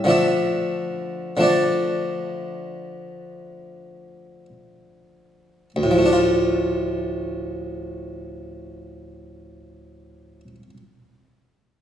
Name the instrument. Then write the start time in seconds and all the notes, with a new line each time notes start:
harpsichord
0.04 D3 F3 A3
0.08 D4 E5
1.37 D3 F3 A3 D4
1.43 D5
5.76 D2
5.83 A2
5.91 F3
5.98 A3
6.06 D4
6.13 F4